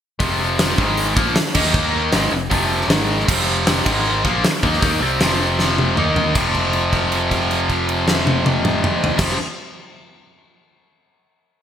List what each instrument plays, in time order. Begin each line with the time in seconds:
0.19 fingered electric bass F1, distorted electric guitar F2 C3 F3, kick, open hi-hat
0.59 snare, open hi-hat
0.78 fingered electric bass G#1, distorted electric guitar G#2 D#3 G#3, kick
0.97 open hi-hat
1.15 fingered electric bass A#1, distorted electric guitar A#2 F3 A#3, kick
1.35 snare, open hi-hat
1.55 fingered electric bass D#2, distorted electric guitar D#3 A#3 D#4, kick, crash
1.65 snare
1.74 kick
2.12 fingered electric bass G#1, distorted electric guitar G#2 D#3 G#3, snare, open hi-hat
2.32 fingered electric bass F1, distorted electric guitar F2 C3
2.50 fingered electric bass F1, distorted electric guitar F2 C3 F3, kick, open hi-hat
2.81 snare
2.88 fingered electric bass G#1, distorted electric guitar G#2 D#3 G#3, snare, open hi-hat
3.20 snare
3.27 fingered electric bass F1, distorted electric guitar F2 C3 F3, kick, crash
3.67 snare, open hi-hat
3.85 fingered electric bass G#1, distorted electric guitar G#2 D#3 G#3, kick, crash
4.24 fingered electric bass A#1, distorted electric guitar A#2 F3 A#3, kick
4.44 snare, open hi-hat
4.63 fingered electric bass D#2, distorted electric guitar D#3 A#3 D#4, kick
4.73 snare
4.82 fingered electric bass D#2, distorted electric guitar D#3 A#3 D#4, kick, open hi-hat
5.01 fingered electric bass C2, distorted electric guitar C3 G3 C4
5.20 fingered electric bass F1, distorted electric guitar F2 C3 F3, snare, open hi-hat
5.59 snare
5.78 high tom
5.96 fingered electric bass D#2, distorted electric guitar D#3 A#3 D#4, mid tom
6.16 floor tom
6.33 fingered electric bass F1, distorted electric guitar F2 C3 F3, kick, crash
6.55 kick, crash
6.73 crash
6.92 kick, crash
7.12 crash
7.31 kick, crash
7.51 crash
7.69 kick, crash
7.89 crash
8.08 snare
8.27 high tom
8.46 high tom
8.65 mid tom
8.84 mid tom
9.04 floor tom
9.17 fingered electric bass F1, distorted electric guitar F2 C3, kick, snare, crash
9.21 distorted electric guitar F3